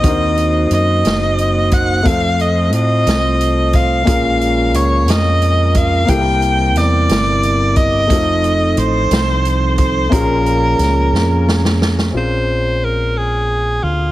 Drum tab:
HH |x-x-x-x-x-x-|x-x-x-x-x-x-|x-x-x-x-x-x-|x-x-x-x-x-x-|
SD |------o-----|------o-----|------o-----|----o-o-----|
BD |o---------o-|o---------o-|o---------o-|o---------o-|

HH |x-x-x-x-x-x-|x-x-x-------|------------|
SD |------o-----|----o-o-oooo|------------|
BD |o---------o-|o-----------|------------|